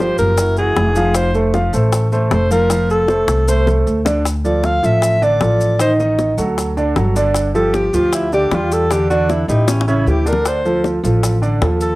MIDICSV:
0, 0, Header, 1, 5, 480
1, 0, Start_track
1, 0, Tempo, 387597
1, 1430, Time_signature, 4, 2, 24, 8
1, 14803, End_track
2, 0, Start_track
2, 0, Title_t, "Alto saxophone"
2, 0, Program_c, 0, 65
2, 0, Note_on_c, 0, 72, 88
2, 225, Note_off_c, 0, 72, 0
2, 232, Note_on_c, 0, 70, 94
2, 678, Note_off_c, 0, 70, 0
2, 725, Note_on_c, 0, 68, 88
2, 1432, Note_on_c, 0, 72, 91
2, 1451, Note_off_c, 0, 68, 0
2, 1671, Note_off_c, 0, 72, 0
2, 2641, Note_on_c, 0, 69, 56
2, 2839, Note_off_c, 0, 69, 0
2, 2887, Note_on_c, 0, 72, 82
2, 3111, Note_off_c, 0, 72, 0
2, 3119, Note_on_c, 0, 70, 89
2, 3559, Note_off_c, 0, 70, 0
2, 3600, Note_on_c, 0, 69, 92
2, 4320, Note_on_c, 0, 72, 88
2, 4338, Note_off_c, 0, 69, 0
2, 4552, Note_off_c, 0, 72, 0
2, 5512, Note_on_c, 0, 74, 82
2, 5759, Note_on_c, 0, 77, 91
2, 5778, Note_off_c, 0, 74, 0
2, 6004, Note_on_c, 0, 76, 90
2, 6022, Note_off_c, 0, 77, 0
2, 6484, Note_on_c, 0, 74, 95
2, 6503, Note_off_c, 0, 76, 0
2, 7187, Note_off_c, 0, 74, 0
2, 7194, Note_on_c, 0, 72, 80
2, 7336, Note_off_c, 0, 72, 0
2, 9357, Note_on_c, 0, 69, 90
2, 9600, Note_on_c, 0, 67, 81
2, 9619, Note_off_c, 0, 69, 0
2, 9833, Note_on_c, 0, 65, 89
2, 9851, Note_off_c, 0, 67, 0
2, 10081, Note_on_c, 0, 64, 78
2, 10099, Note_off_c, 0, 65, 0
2, 10315, Note_off_c, 0, 64, 0
2, 10327, Note_on_c, 0, 67, 102
2, 10578, Note_on_c, 0, 65, 82
2, 10597, Note_off_c, 0, 67, 0
2, 10806, Note_on_c, 0, 69, 105
2, 10825, Note_off_c, 0, 65, 0
2, 11041, Note_on_c, 0, 67, 90
2, 11059, Note_off_c, 0, 69, 0
2, 11261, Note_off_c, 0, 67, 0
2, 11269, Note_on_c, 0, 66, 87
2, 11515, Note_on_c, 0, 64, 78
2, 11534, Note_off_c, 0, 66, 0
2, 11735, Note_off_c, 0, 64, 0
2, 11742, Note_on_c, 0, 63, 83
2, 11991, Note_on_c, 0, 61, 72
2, 12010, Note_off_c, 0, 63, 0
2, 12217, Note_off_c, 0, 61, 0
2, 12224, Note_on_c, 0, 64, 80
2, 12488, Note_on_c, 0, 67, 81
2, 12506, Note_off_c, 0, 64, 0
2, 12726, Note_on_c, 0, 70, 84
2, 12745, Note_off_c, 0, 67, 0
2, 12977, Note_on_c, 0, 72, 81
2, 12996, Note_off_c, 0, 70, 0
2, 13444, Note_off_c, 0, 72, 0
2, 14636, Note_on_c, 0, 69, 83
2, 14803, Note_off_c, 0, 69, 0
2, 14803, End_track
3, 0, Start_track
3, 0, Title_t, "Grand piano"
3, 0, Program_c, 1, 0
3, 0, Note_on_c, 1, 53, 70
3, 2, Note_on_c, 1, 65, 65
3, 5, Note_on_c, 1, 67, 69
3, 390, Note_off_c, 1, 53, 0
3, 391, Note_off_c, 1, 65, 0
3, 393, Note_off_c, 1, 67, 0
3, 480, Note_on_c, 1, 52, 62
3, 483, Note_on_c, 1, 64, 66
3, 490, Note_on_c, 1, 66, 67
3, 673, Note_off_c, 1, 52, 0
3, 675, Note_off_c, 1, 64, 0
3, 679, Note_off_c, 1, 66, 0
3, 719, Note_on_c, 1, 52, 70
3, 721, Note_on_c, 1, 64, 66
3, 732, Note_on_c, 1, 66, 77
3, 1109, Note_off_c, 1, 52, 0
3, 1110, Note_off_c, 1, 64, 0
3, 1116, Note_off_c, 1, 66, 0
3, 1195, Note_on_c, 1, 53, 88
3, 1195, Note_on_c, 1, 65, 81
3, 1201, Note_on_c, 1, 77, 85
3, 1586, Note_off_c, 1, 65, 0
3, 1587, Note_off_c, 1, 53, 0
3, 1590, Note_off_c, 1, 77, 0
3, 1667, Note_on_c, 1, 57, 80
3, 1669, Note_on_c, 1, 69, 72
3, 1674, Note_on_c, 1, 72, 72
3, 1865, Note_off_c, 1, 57, 0
3, 1866, Note_off_c, 1, 69, 0
3, 1869, Note_off_c, 1, 72, 0
3, 1910, Note_on_c, 1, 65, 79
3, 1913, Note_on_c, 1, 53, 75
3, 1914, Note_on_c, 1, 77, 81
3, 2106, Note_off_c, 1, 65, 0
3, 2108, Note_off_c, 1, 53, 0
3, 2109, Note_off_c, 1, 77, 0
3, 2149, Note_on_c, 1, 57, 70
3, 2152, Note_on_c, 1, 69, 75
3, 2160, Note_on_c, 1, 72, 73
3, 2542, Note_off_c, 1, 57, 0
3, 2544, Note_off_c, 1, 69, 0
3, 2548, Note_off_c, 1, 72, 0
3, 2627, Note_on_c, 1, 57, 77
3, 2633, Note_on_c, 1, 69, 76
3, 2639, Note_on_c, 1, 72, 79
3, 3021, Note_off_c, 1, 57, 0
3, 3024, Note_off_c, 1, 69, 0
3, 3027, Note_off_c, 1, 72, 0
3, 3104, Note_on_c, 1, 53, 85
3, 3109, Note_on_c, 1, 65, 83
3, 3114, Note_on_c, 1, 77, 88
3, 3302, Note_off_c, 1, 53, 0
3, 3305, Note_off_c, 1, 65, 0
3, 3308, Note_off_c, 1, 77, 0
3, 3350, Note_on_c, 1, 53, 84
3, 3358, Note_on_c, 1, 65, 81
3, 3363, Note_on_c, 1, 77, 83
3, 3742, Note_off_c, 1, 53, 0
3, 3746, Note_off_c, 1, 65, 0
3, 3750, Note_off_c, 1, 77, 0
3, 3820, Note_on_c, 1, 57, 70
3, 3823, Note_on_c, 1, 69, 68
3, 3830, Note_on_c, 1, 72, 70
3, 4216, Note_off_c, 1, 57, 0
3, 4217, Note_off_c, 1, 69, 0
3, 4221, Note_off_c, 1, 72, 0
3, 4308, Note_on_c, 1, 57, 75
3, 4309, Note_on_c, 1, 69, 65
3, 4315, Note_on_c, 1, 72, 67
3, 4503, Note_off_c, 1, 57, 0
3, 4504, Note_off_c, 1, 69, 0
3, 4508, Note_off_c, 1, 72, 0
3, 4534, Note_on_c, 1, 57, 74
3, 4536, Note_on_c, 1, 69, 71
3, 4540, Note_on_c, 1, 72, 70
3, 4932, Note_off_c, 1, 57, 0
3, 4933, Note_off_c, 1, 69, 0
3, 4936, Note_off_c, 1, 72, 0
3, 5015, Note_on_c, 1, 50, 83
3, 5017, Note_on_c, 1, 62, 88
3, 5022, Note_on_c, 1, 74, 80
3, 5216, Note_off_c, 1, 50, 0
3, 5217, Note_off_c, 1, 62, 0
3, 5220, Note_off_c, 1, 74, 0
3, 5503, Note_on_c, 1, 53, 71
3, 5508, Note_on_c, 1, 65, 72
3, 5511, Note_on_c, 1, 69, 67
3, 5897, Note_off_c, 1, 53, 0
3, 5900, Note_off_c, 1, 65, 0
3, 5902, Note_off_c, 1, 69, 0
3, 5977, Note_on_c, 1, 53, 70
3, 5983, Note_on_c, 1, 65, 67
3, 5985, Note_on_c, 1, 69, 66
3, 6374, Note_off_c, 1, 53, 0
3, 6377, Note_off_c, 1, 65, 0
3, 6379, Note_off_c, 1, 69, 0
3, 6461, Note_on_c, 1, 50, 83
3, 6465, Note_on_c, 1, 62, 77
3, 6465, Note_on_c, 1, 74, 82
3, 6659, Note_off_c, 1, 50, 0
3, 6662, Note_off_c, 1, 62, 0
3, 6662, Note_off_c, 1, 74, 0
3, 6696, Note_on_c, 1, 53, 66
3, 6697, Note_on_c, 1, 65, 73
3, 6703, Note_on_c, 1, 69, 67
3, 7094, Note_off_c, 1, 53, 0
3, 7094, Note_off_c, 1, 65, 0
3, 7098, Note_off_c, 1, 69, 0
3, 7174, Note_on_c, 1, 51, 75
3, 7178, Note_on_c, 1, 63, 81
3, 7184, Note_on_c, 1, 75, 77
3, 7375, Note_off_c, 1, 51, 0
3, 7378, Note_off_c, 1, 63, 0
3, 7382, Note_off_c, 1, 75, 0
3, 7423, Note_on_c, 1, 51, 82
3, 7425, Note_on_c, 1, 63, 80
3, 7433, Note_on_c, 1, 75, 88
3, 7818, Note_off_c, 1, 51, 0
3, 7820, Note_off_c, 1, 63, 0
3, 7824, Note_off_c, 1, 75, 0
3, 7896, Note_on_c, 1, 54, 71
3, 7898, Note_on_c, 1, 66, 73
3, 7900, Note_on_c, 1, 69, 68
3, 8295, Note_off_c, 1, 54, 0
3, 8295, Note_off_c, 1, 66, 0
3, 8297, Note_off_c, 1, 69, 0
3, 8383, Note_on_c, 1, 50, 83
3, 8386, Note_on_c, 1, 62, 87
3, 8393, Note_on_c, 1, 74, 81
3, 8582, Note_off_c, 1, 50, 0
3, 8583, Note_off_c, 1, 62, 0
3, 8588, Note_off_c, 1, 74, 0
3, 8624, Note_on_c, 1, 54, 75
3, 8632, Note_on_c, 1, 66, 73
3, 8632, Note_on_c, 1, 69, 69
3, 8822, Note_off_c, 1, 54, 0
3, 8827, Note_off_c, 1, 66, 0
3, 8827, Note_off_c, 1, 69, 0
3, 8868, Note_on_c, 1, 50, 86
3, 8873, Note_on_c, 1, 62, 85
3, 8875, Note_on_c, 1, 74, 89
3, 9262, Note_off_c, 1, 50, 0
3, 9265, Note_off_c, 1, 62, 0
3, 9266, Note_off_c, 1, 74, 0
3, 9343, Note_on_c, 1, 53, 79
3, 9347, Note_on_c, 1, 67, 74
3, 9349, Note_on_c, 1, 65, 70
3, 9739, Note_off_c, 1, 53, 0
3, 9741, Note_off_c, 1, 67, 0
3, 9743, Note_off_c, 1, 65, 0
3, 9828, Note_on_c, 1, 53, 75
3, 9833, Note_on_c, 1, 65, 69
3, 9836, Note_on_c, 1, 67, 73
3, 10222, Note_off_c, 1, 53, 0
3, 10225, Note_off_c, 1, 65, 0
3, 10227, Note_off_c, 1, 67, 0
3, 10310, Note_on_c, 1, 62, 80
3, 10311, Note_on_c, 1, 50, 77
3, 10315, Note_on_c, 1, 74, 80
3, 10507, Note_off_c, 1, 50, 0
3, 10507, Note_off_c, 1, 62, 0
3, 10510, Note_off_c, 1, 74, 0
3, 10556, Note_on_c, 1, 55, 70
3, 10561, Note_on_c, 1, 65, 72
3, 10565, Note_on_c, 1, 67, 72
3, 10947, Note_off_c, 1, 55, 0
3, 10951, Note_off_c, 1, 65, 0
3, 10953, Note_off_c, 1, 67, 0
3, 11039, Note_on_c, 1, 50, 83
3, 11039, Note_on_c, 1, 62, 81
3, 11048, Note_on_c, 1, 74, 78
3, 11232, Note_off_c, 1, 50, 0
3, 11232, Note_off_c, 1, 62, 0
3, 11237, Note_off_c, 1, 74, 0
3, 11276, Note_on_c, 1, 50, 88
3, 11277, Note_on_c, 1, 62, 83
3, 11280, Note_on_c, 1, 74, 90
3, 11668, Note_off_c, 1, 50, 0
3, 11668, Note_off_c, 1, 62, 0
3, 11670, Note_off_c, 1, 74, 0
3, 11750, Note_on_c, 1, 52, 70
3, 11754, Note_on_c, 1, 64, 70
3, 11764, Note_on_c, 1, 67, 67
3, 12144, Note_off_c, 1, 52, 0
3, 12147, Note_off_c, 1, 64, 0
3, 12152, Note_off_c, 1, 67, 0
3, 12231, Note_on_c, 1, 49, 84
3, 12238, Note_on_c, 1, 61, 75
3, 12241, Note_on_c, 1, 73, 82
3, 12428, Note_off_c, 1, 49, 0
3, 12432, Note_off_c, 1, 61, 0
3, 12434, Note_off_c, 1, 73, 0
3, 12474, Note_on_c, 1, 52, 68
3, 12474, Note_on_c, 1, 64, 69
3, 12479, Note_on_c, 1, 67, 73
3, 12669, Note_off_c, 1, 64, 0
3, 12670, Note_off_c, 1, 52, 0
3, 12672, Note_off_c, 1, 67, 0
3, 12699, Note_on_c, 1, 50, 82
3, 12703, Note_on_c, 1, 62, 81
3, 12708, Note_on_c, 1, 74, 78
3, 13097, Note_off_c, 1, 50, 0
3, 13100, Note_off_c, 1, 62, 0
3, 13103, Note_off_c, 1, 74, 0
3, 13193, Note_on_c, 1, 53, 73
3, 13194, Note_on_c, 1, 65, 71
3, 13201, Note_on_c, 1, 69, 70
3, 13585, Note_off_c, 1, 53, 0
3, 13586, Note_off_c, 1, 65, 0
3, 13590, Note_off_c, 1, 69, 0
3, 13665, Note_on_c, 1, 53, 75
3, 13670, Note_on_c, 1, 65, 69
3, 13672, Note_on_c, 1, 69, 70
3, 14060, Note_off_c, 1, 53, 0
3, 14063, Note_off_c, 1, 65, 0
3, 14065, Note_off_c, 1, 69, 0
3, 14139, Note_on_c, 1, 50, 84
3, 14144, Note_on_c, 1, 62, 81
3, 14147, Note_on_c, 1, 74, 81
3, 14340, Note_off_c, 1, 50, 0
3, 14343, Note_off_c, 1, 62, 0
3, 14344, Note_off_c, 1, 74, 0
3, 14385, Note_on_c, 1, 53, 71
3, 14387, Note_on_c, 1, 65, 67
3, 14393, Note_on_c, 1, 69, 71
3, 14780, Note_off_c, 1, 53, 0
3, 14781, Note_off_c, 1, 65, 0
3, 14784, Note_off_c, 1, 69, 0
3, 14803, End_track
4, 0, Start_track
4, 0, Title_t, "Upright bass"
4, 0, Program_c, 2, 32
4, 0, Note_on_c, 2, 31, 86
4, 164, Note_off_c, 2, 31, 0
4, 234, Note_on_c, 2, 30, 96
4, 903, Note_off_c, 2, 30, 0
4, 947, Note_on_c, 2, 29, 88
4, 2073, Note_off_c, 2, 29, 0
4, 2139, Note_on_c, 2, 33, 92
4, 2814, Note_off_c, 2, 33, 0
4, 2858, Note_on_c, 2, 29, 93
4, 3987, Note_off_c, 2, 29, 0
4, 4058, Note_on_c, 2, 36, 100
4, 4732, Note_off_c, 2, 36, 0
4, 4789, Note_on_c, 2, 38, 90
4, 5913, Note_off_c, 2, 38, 0
4, 5977, Note_on_c, 2, 33, 86
4, 6652, Note_off_c, 2, 33, 0
4, 6702, Note_on_c, 2, 33, 87
4, 7831, Note_off_c, 2, 33, 0
4, 7894, Note_on_c, 2, 38, 92
4, 8572, Note_off_c, 2, 38, 0
4, 8625, Note_on_c, 2, 31, 85
4, 9754, Note_off_c, 2, 31, 0
4, 9819, Note_on_c, 2, 38, 88
4, 10495, Note_off_c, 2, 38, 0
4, 10539, Note_on_c, 2, 40, 84
4, 11672, Note_off_c, 2, 40, 0
4, 11742, Note_on_c, 2, 33, 95
4, 12417, Note_off_c, 2, 33, 0
4, 12463, Note_on_c, 2, 38, 87
4, 13593, Note_off_c, 2, 38, 0
4, 13666, Note_on_c, 2, 33, 97
4, 14338, Note_off_c, 2, 33, 0
4, 14384, Note_on_c, 2, 39, 95
4, 14803, Note_off_c, 2, 39, 0
4, 14803, End_track
5, 0, Start_track
5, 0, Title_t, "Drums"
5, 0, Note_on_c, 9, 60, 61
5, 120, Note_off_c, 9, 60, 0
5, 227, Note_on_c, 9, 70, 68
5, 233, Note_on_c, 9, 60, 35
5, 350, Note_off_c, 9, 70, 0
5, 357, Note_off_c, 9, 60, 0
5, 465, Note_on_c, 9, 70, 87
5, 467, Note_on_c, 9, 60, 66
5, 589, Note_off_c, 9, 70, 0
5, 591, Note_off_c, 9, 60, 0
5, 701, Note_on_c, 9, 70, 29
5, 710, Note_on_c, 9, 60, 37
5, 825, Note_off_c, 9, 70, 0
5, 834, Note_off_c, 9, 60, 0
5, 943, Note_on_c, 9, 70, 28
5, 948, Note_on_c, 9, 60, 70
5, 948, Note_on_c, 9, 61, 87
5, 1067, Note_off_c, 9, 70, 0
5, 1072, Note_off_c, 9, 60, 0
5, 1072, Note_off_c, 9, 61, 0
5, 1183, Note_on_c, 9, 70, 74
5, 1189, Note_on_c, 9, 60, 38
5, 1307, Note_off_c, 9, 70, 0
5, 1313, Note_off_c, 9, 60, 0
5, 1419, Note_on_c, 9, 60, 73
5, 1420, Note_on_c, 9, 70, 94
5, 1543, Note_off_c, 9, 60, 0
5, 1544, Note_off_c, 9, 70, 0
5, 1664, Note_on_c, 9, 70, 31
5, 1788, Note_off_c, 9, 70, 0
5, 1905, Note_on_c, 9, 60, 59
5, 1911, Note_on_c, 9, 70, 30
5, 2029, Note_off_c, 9, 60, 0
5, 2035, Note_off_c, 9, 70, 0
5, 2148, Note_on_c, 9, 70, 69
5, 2272, Note_off_c, 9, 70, 0
5, 2384, Note_on_c, 9, 70, 91
5, 2385, Note_on_c, 9, 60, 75
5, 2508, Note_off_c, 9, 60, 0
5, 2508, Note_off_c, 9, 70, 0
5, 2628, Note_on_c, 9, 70, 29
5, 2752, Note_off_c, 9, 70, 0
5, 2863, Note_on_c, 9, 60, 71
5, 2863, Note_on_c, 9, 61, 92
5, 2868, Note_on_c, 9, 70, 29
5, 2987, Note_off_c, 9, 60, 0
5, 2987, Note_off_c, 9, 61, 0
5, 2991, Note_off_c, 9, 70, 0
5, 3109, Note_on_c, 9, 70, 72
5, 3233, Note_off_c, 9, 70, 0
5, 3343, Note_on_c, 9, 60, 73
5, 3346, Note_on_c, 9, 70, 90
5, 3467, Note_off_c, 9, 60, 0
5, 3470, Note_off_c, 9, 70, 0
5, 3591, Note_on_c, 9, 70, 30
5, 3715, Note_off_c, 9, 70, 0
5, 3817, Note_on_c, 9, 60, 58
5, 3834, Note_on_c, 9, 70, 28
5, 3940, Note_off_c, 9, 60, 0
5, 3958, Note_off_c, 9, 70, 0
5, 4061, Note_on_c, 9, 60, 87
5, 4068, Note_on_c, 9, 70, 73
5, 4185, Note_off_c, 9, 60, 0
5, 4192, Note_off_c, 9, 70, 0
5, 4311, Note_on_c, 9, 70, 92
5, 4435, Note_off_c, 9, 70, 0
5, 4546, Note_on_c, 9, 61, 73
5, 4556, Note_on_c, 9, 70, 29
5, 4670, Note_off_c, 9, 61, 0
5, 4680, Note_off_c, 9, 70, 0
5, 4792, Note_on_c, 9, 70, 32
5, 4916, Note_off_c, 9, 70, 0
5, 5026, Note_on_c, 9, 61, 96
5, 5038, Note_on_c, 9, 70, 75
5, 5150, Note_off_c, 9, 61, 0
5, 5162, Note_off_c, 9, 70, 0
5, 5268, Note_on_c, 9, 60, 71
5, 5275, Note_on_c, 9, 70, 83
5, 5392, Note_off_c, 9, 60, 0
5, 5399, Note_off_c, 9, 70, 0
5, 5509, Note_on_c, 9, 70, 27
5, 5632, Note_off_c, 9, 70, 0
5, 5741, Note_on_c, 9, 60, 60
5, 5749, Note_on_c, 9, 70, 27
5, 5865, Note_off_c, 9, 60, 0
5, 5872, Note_off_c, 9, 70, 0
5, 5990, Note_on_c, 9, 70, 67
5, 6114, Note_off_c, 9, 70, 0
5, 6218, Note_on_c, 9, 60, 67
5, 6230, Note_on_c, 9, 70, 88
5, 6342, Note_off_c, 9, 60, 0
5, 6354, Note_off_c, 9, 70, 0
5, 6469, Note_on_c, 9, 70, 27
5, 6593, Note_off_c, 9, 70, 0
5, 6696, Note_on_c, 9, 60, 69
5, 6696, Note_on_c, 9, 61, 80
5, 6710, Note_on_c, 9, 70, 29
5, 6820, Note_off_c, 9, 60, 0
5, 6820, Note_off_c, 9, 61, 0
5, 6834, Note_off_c, 9, 70, 0
5, 6943, Note_on_c, 9, 70, 69
5, 7067, Note_off_c, 9, 70, 0
5, 7176, Note_on_c, 9, 60, 69
5, 7183, Note_on_c, 9, 70, 88
5, 7300, Note_off_c, 9, 60, 0
5, 7306, Note_off_c, 9, 70, 0
5, 7427, Note_on_c, 9, 70, 30
5, 7551, Note_off_c, 9, 70, 0
5, 7660, Note_on_c, 9, 60, 59
5, 7665, Note_on_c, 9, 70, 28
5, 7784, Note_off_c, 9, 60, 0
5, 7788, Note_off_c, 9, 70, 0
5, 7901, Note_on_c, 9, 70, 70
5, 7906, Note_on_c, 9, 60, 34
5, 8025, Note_off_c, 9, 70, 0
5, 8030, Note_off_c, 9, 60, 0
5, 8146, Note_on_c, 9, 60, 65
5, 8151, Note_on_c, 9, 70, 91
5, 8270, Note_off_c, 9, 60, 0
5, 8275, Note_off_c, 9, 70, 0
5, 8386, Note_on_c, 9, 60, 32
5, 8389, Note_on_c, 9, 70, 28
5, 8510, Note_off_c, 9, 60, 0
5, 8513, Note_off_c, 9, 70, 0
5, 8620, Note_on_c, 9, 60, 69
5, 8620, Note_on_c, 9, 61, 84
5, 8631, Note_on_c, 9, 70, 30
5, 8744, Note_off_c, 9, 60, 0
5, 8744, Note_off_c, 9, 61, 0
5, 8754, Note_off_c, 9, 70, 0
5, 8863, Note_on_c, 9, 60, 34
5, 8866, Note_on_c, 9, 70, 69
5, 8987, Note_off_c, 9, 60, 0
5, 8990, Note_off_c, 9, 70, 0
5, 9095, Note_on_c, 9, 60, 71
5, 9107, Note_on_c, 9, 70, 88
5, 9219, Note_off_c, 9, 60, 0
5, 9231, Note_off_c, 9, 70, 0
5, 9349, Note_on_c, 9, 70, 27
5, 9473, Note_off_c, 9, 70, 0
5, 9582, Note_on_c, 9, 60, 57
5, 9587, Note_on_c, 9, 70, 29
5, 9706, Note_off_c, 9, 60, 0
5, 9711, Note_off_c, 9, 70, 0
5, 9828, Note_on_c, 9, 70, 74
5, 9952, Note_off_c, 9, 70, 0
5, 10063, Note_on_c, 9, 60, 67
5, 10064, Note_on_c, 9, 70, 93
5, 10187, Note_off_c, 9, 60, 0
5, 10188, Note_off_c, 9, 70, 0
5, 10309, Note_on_c, 9, 70, 29
5, 10433, Note_off_c, 9, 70, 0
5, 10545, Note_on_c, 9, 60, 69
5, 10545, Note_on_c, 9, 61, 81
5, 10550, Note_on_c, 9, 70, 30
5, 10669, Note_off_c, 9, 60, 0
5, 10669, Note_off_c, 9, 61, 0
5, 10673, Note_off_c, 9, 70, 0
5, 10793, Note_on_c, 9, 70, 69
5, 10917, Note_off_c, 9, 70, 0
5, 11029, Note_on_c, 9, 60, 75
5, 11036, Note_on_c, 9, 70, 90
5, 11153, Note_off_c, 9, 60, 0
5, 11160, Note_off_c, 9, 70, 0
5, 11274, Note_on_c, 9, 70, 28
5, 11398, Note_off_c, 9, 70, 0
5, 11511, Note_on_c, 9, 60, 62
5, 11514, Note_on_c, 9, 70, 29
5, 11634, Note_off_c, 9, 60, 0
5, 11638, Note_off_c, 9, 70, 0
5, 11749, Note_on_c, 9, 60, 34
5, 11755, Note_on_c, 9, 70, 70
5, 11873, Note_off_c, 9, 60, 0
5, 11878, Note_off_c, 9, 70, 0
5, 11985, Note_on_c, 9, 60, 99
5, 11986, Note_on_c, 9, 70, 98
5, 12109, Note_off_c, 9, 60, 0
5, 12110, Note_off_c, 9, 70, 0
5, 12146, Note_on_c, 9, 60, 73
5, 12232, Note_on_c, 9, 70, 28
5, 12270, Note_off_c, 9, 60, 0
5, 12356, Note_off_c, 9, 70, 0
5, 12472, Note_on_c, 9, 70, 28
5, 12596, Note_off_c, 9, 70, 0
5, 12713, Note_on_c, 9, 70, 69
5, 12787, Note_on_c, 9, 61, 76
5, 12837, Note_off_c, 9, 70, 0
5, 12911, Note_off_c, 9, 61, 0
5, 12947, Note_on_c, 9, 70, 90
5, 12948, Note_on_c, 9, 60, 70
5, 13071, Note_off_c, 9, 70, 0
5, 13072, Note_off_c, 9, 60, 0
5, 13195, Note_on_c, 9, 70, 27
5, 13319, Note_off_c, 9, 70, 0
5, 13427, Note_on_c, 9, 60, 59
5, 13438, Note_on_c, 9, 70, 30
5, 13551, Note_off_c, 9, 60, 0
5, 13561, Note_off_c, 9, 70, 0
5, 13679, Note_on_c, 9, 70, 71
5, 13803, Note_off_c, 9, 70, 0
5, 13911, Note_on_c, 9, 60, 68
5, 13915, Note_on_c, 9, 70, 92
5, 14035, Note_off_c, 9, 60, 0
5, 14039, Note_off_c, 9, 70, 0
5, 14152, Note_on_c, 9, 70, 28
5, 14276, Note_off_c, 9, 70, 0
5, 14387, Note_on_c, 9, 70, 30
5, 14388, Note_on_c, 9, 60, 75
5, 14388, Note_on_c, 9, 61, 83
5, 14511, Note_off_c, 9, 70, 0
5, 14512, Note_off_c, 9, 60, 0
5, 14512, Note_off_c, 9, 61, 0
5, 14622, Note_on_c, 9, 70, 67
5, 14746, Note_off_c, 9, 70, 0
5, 14803, End_track
0, 0, End_of_file